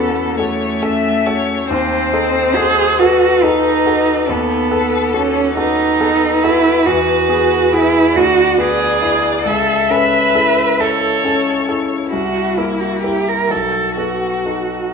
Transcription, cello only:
0.00 0.39 B3 medium
0.38 1.69 A3 medium
1.70 2.57 C4 medium
2.56 3.00 G#4 medium
2.99 3.45 F#4 medium
3.44 4.32 D#4 medium
4.30 5.15 B3 medium
5.14 5.57 C#4 medium
5.58 6.46 D#4 medium
6.44 6.88 E4 medium
6.86 7.75 F#4 medium
7.73 8.18 E4 medium
8.16 8.61 F#4 medium
8.60 9.46 G#4 medium
9.46 9.93 A4 medium
9.91 10.82 B4 medium
10.80 11.69 A4 medium
12.11 12.59 F#4 medium
12.58 12.82 E4 medium
12.80 13.03 F#4 medium
13.03 13.30 G4 medium
13.28 13.53 A#4 medium
13.51 13.97 A4 medium
13.98 14.94 F#4 soft

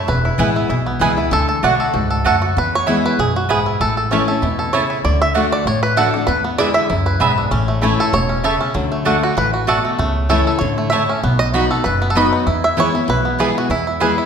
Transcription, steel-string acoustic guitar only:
0.08 0.67 E2 medium
0.38 0.68 E3 medium
0.38 0.69 G#3 loud
0.38 0.69 B3 medium
0.38 0.69 E4 loud
0.70 1.29 B2 medium
0.99 1.17 E3 medium
0.99 1.17 G#3 medium
0.99 1.17 B3 medium
0.99 1.15 E4 loud
1.16 1.32 B3 medium
1.16 1.31 E4 medium
1.31 1.61 D3 medium
1.63 1.92 D3 medium
1.63 1.93 A3 loud
1.63 1.93 D4 loud
1.63 1.94 F#4 loud
1.94 2.23 G#2 medium
2.26 2.55 F#2 medium
2.57 3.15 E2 medium
2.88 3.17 E3 medium
2.88 3.17 G#3 medium
2.88 3.18 B3 medium
2.88 3.18 E4 loud
3.19 3.48 F#2 medium
3.50 3.79 G#2 medium
3.81 4.40 A2 medium
4.11 4.27 E3 medium
4.11 4.28 A3 medium
4.11 4.28 C#4 loud
4.11 4.27 E4 medium
4.28 4.43 C#4 medium
4.28 4.42 E4 medium
4.43 4.72 B2 medium
4.73 5.03 C#3 medium
5.05 5.34 D3 medium
5.35 5.64 D3 medium
5.35 5.65 A3 medium
5.35 5.65 D4 medium
5.35 5.66 F#4 loud
5.67 6.25 A2 loud
5.97 6.13 D3 medium
5.97 6.13 A3 medium
5.97 6.14 D4 loud
5.97 6.13 F#4 medium
6.14 6.28 D4 medium
6.14 6.27 F#4 medium
6.28 6.87 E2 medium
6.58 6.88 D3 loud
6.58 6.88 G#3 loud
6.58 6.89 B3 loud
6.58 6.89 E4 loud
6.90 7.19 F#2 medium
7.21 7.50 G#2 medium
7.52 8.11 A2 loud
7.81 8.12 E3 medium
7.81 8.12 A3 medium
7.81 8.12 C#4 medium
7.81 8.13 E4 loud
8.13 8.43 B2 medium
8.44 8.74 C#3 medium
8.74 9.04 D3 medium
9.05 9.35 D3 medium
9.05 9.36 A3 loud
9.05 9.36 D4 medium
9.05 9.36 F#4 medium
9.37 9.67 E3 medium
9.67 9.97 B2 medium
9.98 10.58 C#3 medium
10.29 10.59 E3 medium
10.29 10.60 A3 loud
10.29 10.60 C#4 medium
10.29 10.60 E4 loud
10.61 10.91 D3 medium
10.93 11.22 A2 medium
11.23 11.82 B2 medium
11.54 11.70 F#3 medium
11.54 11.71 B3 medium
11.54 11.71 D#4 medium
11.54 11.70 F#4 loud
11.71 11.86 D#4 soft
11.71 11.85 F#4 medium
11.86 12.44 F#2 loud
12.15 12.45 F#3 medium
12.15 12.46 B3 medium
12.15 12.46 D#4 loud
12.15 12.46 F#4 loud
12.47 13.06 E2 medium
12.77 12.93 E3 medium
12.77 12.94 G#3 medium
12.77 12.94 B3 medium
12.77 12.93 E4 medium
12.94 13.09 B3 soft
12.94 13.08 E4 medium
13.08 13.67 B2 medium
13.39 13.69 E3 medium
13.39 13.69 G#3 medium
13.39 13.69 B3 medium
13.39 13.70 E4 loud
13.70 14.26 E2 medium
14.01 14.26 E3 medium
14.01 14.26 G#3 medium
14.01 14.26 B3 medium
14.01 14.26 E4 medium

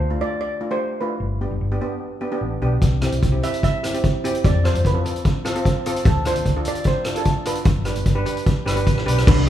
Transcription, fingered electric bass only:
0.00 0.16 D2 medium
1.20 1.44 G1 medium
1.51 1.59 G1 medium
1.61 1.77 G1 medium
2.41 2.60 A1 medium
2.62 2.80 B1 medium
2.82 3.06 C2 medium
3.12 3.21 C2 medium
3.23 3.39 C2 medium
4.44 4.68 F2 medium
4.75 4.82 F2 medium
4.84 5.00 F2 medium
6.06 6.29 D2 medium
6.35 6.43 D2 medium
6.45 6.61 D2 medium
7.65 7.90 G1 medium
7.96 8.04 G1 medium
8.06 8.22 G1 medium
8.66 8.85 G1 medium
8.86 9.05 A1 medium
9.07 9.25 B1 medium
9.27 9.49 C2 loud

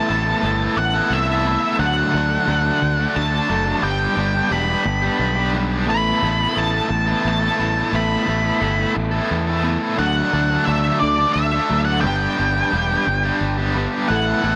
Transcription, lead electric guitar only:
0.00 0.77 A5 loud
0.78 1.13 F#5 medium
1.13 1.76 E5 medium
1.80 3.16 F#5 loud
3.16 3.83 A5 loud
3.84 4.54 G5 loud
4.52 5.50 B5 loud
5.90 6.60 B5 loud
6.58 7.27 A5 loud
7.28 7.97 A5 loud
7.96 8.93 B5 loud
9.99 10.63 F#5 loud
10.65 10.99 E5 loud
11.00 11.33 D5 medium
11.33 11.82 E5 loud
11.85 12.00 F#5 loud
12.01 13.35 G5 loud
14.08 14.56 F#5 loud

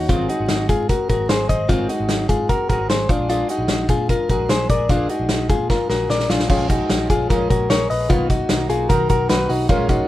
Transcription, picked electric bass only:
0.09 0.26 G#1 medium
0.40 0.48 G#1 medium
0.50 0.66 G#1 medium
0.69 0.94 G#2 medium
1.09 1.26 G#1 medium
1.30 1.46 G#1 loud
1.49 1.66 G#1 medium
1.69 1.86 G#1 loud
2.00 2.08 G#1 medium
2.09 2.26 G#1 medium
2.29 2.54 G#2 medium
2.70 2.86 G#1 medium
2.89 3.05 G#1 loud
3.09 3.42 A#1 medium
3.59 3.67 A#1 medium
3.68 3.85 A#1 medium
3.89 4.14 A#2 loud
4.30 4.46 A#1 loud
4.49 4.66 A#1 loud
4.70 4.86 A#1 medium
4.89 5.06 A#1 loud
5.20 5.28 A#1 medium
5.29 5.51 A#1 medium
5.50 5.74 A#2 medium
5.90 6.06 A#1 medium
6.09 6.26 A#1 medium
6.30 6.46 A#1 medium
6.50 6.83 A#1 loud
6.90 7.06 A#1 medium
7.10 7.26 A#1 medium
7.31 7.47 A#1 loud
7.50 7.67 A#1 medium
7.70 7.86 A#1 loud
7.91 8.07 A#1 medium
8.10 8.43 B1 loud
8.50 8.66 B1 medium
8.70 8.86 B1 medium
8.90 9.06 B1 loud
9.10 9.26 B1 loud
9.30 9.46 B1 loud
9.50 9.66 B1 medium
9.69 10.02 A#1 loud

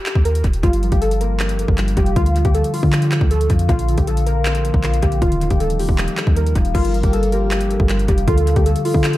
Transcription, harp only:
0.00 0.52 A3 loud
0.63 2.21 G2 medium
0.82 1.96 F3 medium
1.01 1.77 G3 medium
1.21 1.58 A#3 medium
1.40 2.73 D4 medium
1.59 2.60 A#3 medium
1.78 2.21 G3 loud
1.97 2.21 F3 medium
2.16 3.74 D3 medium
2.35 3.49 F3 medium
2.54 3.30 A3 medium
2.74 3.11 D4 loud
2.93 4.77 D5 medium
3.12 5.28 D4 medium
3.31 3.75 A3 loud
3.50 3.74 F3 medium
3.69 3.93 A#2 medium
3.88 5.01 D3 medium
4.07 4.82 F3 medium
4.26 4.64 A#3 loud
4.46 7.46 C4 medium
4.65 5.79 A#3 medium
4.84 5.08 F3 medium
5.03 5.27 D3 medium
5.22 6.80 D#3 medium
5.41 6.54 F3 medium
5.60 6.35 G3 medium
5.79 6.17 A#3 loud
5.98 7.57 D#4 medium
6.17 7.32 A#3 medium
6.36 6.80 G3 medium
6.56 6.80 F3 medium
6.75 8.33 G2 medium
6.94 8.07 F3 medium
7.13 7.88 G3 medium
7.32 7.70 A#3 medium
7.51 8.85 D4 medium
7.70 8.72 A#3 medium
7.90 8.33 G3 loud
8.08 8.33 F3 medium
8.28 9.18 D3 medium
8.47 9.18 F3 medium
8.66 9.18 A3 medium
8.85 9.18 D4 loud
9.04 9.18 D5 medium

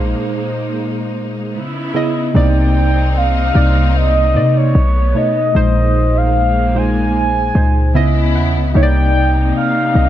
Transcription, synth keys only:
0.00 0.14 A#2 loud
0.00 0.15 G#3 medium
0.00 0.18 D#4 medium
0.00 0.15 C5 loud
1.94 2.19 C#3 medium
1.94 2.20 B3 medium
1.94 2.20 E4 medium
1.94 2.21 D#5 loud
2.34 3.09 C3 medium
2.34 3.10 A#3 medium
2.34 3.10 D#4 medium
2.34 3.10 D5 loud
3.54 4.04 C3 medium
3.54 4.05 A#3 medium
3.54 4.05 D#4 medium
3.54 4.06 D5 medium
4.34 4.75 C3 medium
4.34 4.75 A#3 medium
4.34 4.75 D#4 medium
4.34 4.76 D5 medium
5.14 5.39 B2 medium
5.14 5.40 A3 medium
5.14 5.40 D#4 medium
5.14 5.41 C#5 medium
5.54 6.29 A#2 loud
5.54 6.30 G#3 medium
5.54 6.30 D#4 medium
5.54 6.30 C5 loud
6.74 7.24 A#2 medium
6.74 7.25 G#3 medium
6.74 7.25 D#4 medium
6.74 7.26 C5 medium
7.54 7.94 A#2 medium
7.54 7.95 G#3 medium
7.54 7.95 D#4 medium
7.54 7.96 C5 medium
7.94 8.58 C#3 medium
7.94 8.59 B3 medium
7.94 8.59 E4 medium
7.94 8.14 D#5 loud
7.94 8.14 E5 medium
8.15 8.34 D#5 medium
8.35 8.72 F#5 medium
8.74 9.49 C3 loud
8.74 9.50 A#3 medium
8.74 9.50 D#4 medium
8.74 8.82 C#5 medium
8.83 9.54 D5 loud
9.94 10.09 C3 medium
9.94 10.09 A#3 medium
9.94 10.09 D#4 medium
9.94 10.09 D#5 medium

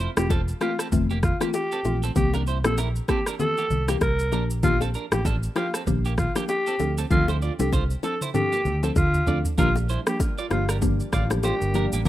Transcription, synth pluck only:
0.00 0.13 A3 medium
0.00 0.13 C4 medium
0.00 0.13 E4 medium
0.00 0.13 F4 loud
0.17 0.32 E3 medium
0.17 0.32 A3 medium
0.17 0.32 C4 medium
0.17 0.32 F4 medium
0.61 0.80 E3 medium
0.61 0.81 A3 medium
0.61 0.81 C4 medium
0.61 0.81 F4 medium
0.92 1.11 E3 medium
0.92 1.12 A3 medium
0.92 1.12 C4 medium
0.92 1.12 F4 loud
1.41 1.56 E3 medium
1.41 1.56 A3 medium
1.41 1.56 C4 medium
1.41 1.56 F4 medium
1.85 2.04 E3 medium
1.85 2.04 A3 medium
1.85 2.04 C4 medium
1.85 2.05 F4 medium
2.16 2.60 E3 medium
2.16 2.60 A#3 medium
2.16 2.60 C4 medium
2.16 2.60 G4 loud
2.64 2.80 E3 medium
2.64 2.80 A#3 medium
2.64 2.80 C4 medium
2.64 2.80 G4 medium
3.08 3.28 E3 medium
3.08 3.28 A#3 medium
3.08 3.28 C4 medium
3.08 3.28 G4 medium
3.39 3.59 E3 loud
3.39 3.59 A#3 medium
3.39 3.59 C4 medium
3.39 3.59 G4 loud
3.88 4.03 E3 medium
3.88 4.03 A#3 medium
3.88 4.03 C4 medium
3.88 4.04 G4 medium
4.32 4.52 F3 medium
4.32 4.52 A#3 medium
4.32 4.52 D4 medium
4.32 4.52 G4 medium
4.63 5.08 F3 medium
4.63 5.08 A#3 medium
4.63 5.08 D4 medium
4.63 5.08 G4 loud
5.12 5.27 F3 medium
5.12 5.27 A#3 medium
5.12 5.27 D4 medium
5.12 5.27 G4 medium
5.56 5.75 F3 medium
5.56 5.75 A#3 medium
5.56 5.75 D4 medium
5.56 5.76 G4 medium
5.87 6.06 F3 medium
5.87 6.06 A#3 medium
5.87 6.06 D4 medium
5.87 6.07 G4 loud
6.36 6.51 F3 medium
6.36 6.51 A#3 medium
6.36 6.51 D4 medium
6.36 6.51 G4 medium
6.79 6.99 F3 medium
6.79 6.99 C4 medium
6.79 6.99 D4 medium
6.79 6.99 A4 medium
7.10 7.55 F3 medium
7.10 7.55 C4 medium
7.10 7.55 D4 medium
7.10 7.55 A4 loud
7.59 7.74 F3 medium
7.59 7.75 C4 medium
7.59 7.75 D4 medium
7.59 7.75 A4 medium
8.03 8.23 F3 medium
8.03 8.23 C4 medium
8.03 8.23 D4 medium
8.03 8.23 A4 medium
8.34 8.54 F3 loud
8.34 8.54 C4 medium
8.34 8.54 D4 medium
8.34 8.54 A4 loud
8.83 8.98 F3 medium
8.83 8.98 C4 medium
8.83 8.98 D4 medium
8.83 8.98 A4 medium
9.27 9.46 F3 medium
9.27 9.46 C4 medium
9.27 9.47 D4 medium
9.27 9.47 A4 medium
9.58 10.02 F3 medium
9.58 10.03 A#3 medium
9.58 10.03 D4 medium
9.58 10.03 G4 loud
10.07 10.22 F3 medium
10.07 10.22 A#3 medium
10.07 10.22 D4 medium
10.07 10.22 G4 medium
10.51 10.70 F3 medium
10.51 10.70 A#3 medium
10.51 10.70 D4 medium
10.51 10.71 G4 medium
10.82 11.01 F3 loud
10.82 11.01 A#3 medium
10.82 11.01 D4 medium
10.82 11.01 G4 loud
11.31 11.46 F3 medium
11.31 11.46 A#3 medium
11.31 11.46 D4 medium
11.31 11.46 G4 medium
11.74 11.94 F3 medium
11.74 11.94 A#3 medium
11.74 11.94 D4 medium
11.74 11.94 G4 medium
12.05 12.08 F3 medium

